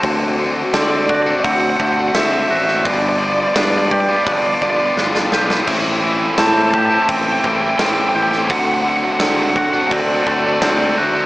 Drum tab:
CC |----------------|----------------|x---------------|----------------|
HH |o---o---o---o---|o---o---o-------|o---o---o---o---|o---o---o---o---|
SD |----o-------o--o|----o-------oooo|----o-------o--o|----o-------o---|
BD |o-----o-o-o-----|o-----o-o-o-----|o-----o-o-o-----|o-----o-o-o-----|